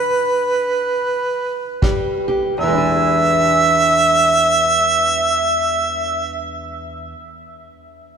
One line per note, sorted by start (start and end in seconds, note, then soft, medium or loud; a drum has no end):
0.00 1.80 B4 medium
1.82 2.51 F2 medium
1.82 2.57 G3 medium
1.82 kick medium
2.28 2.54 G4 medium
2.58 7.14 E2 medium
2.58 6.41 E5 medium
2.63 7.17 E3 medium
2.68 7.19 G#3 medium
2.73 7.21 D4 medium
2.78 7.24 G#4 medium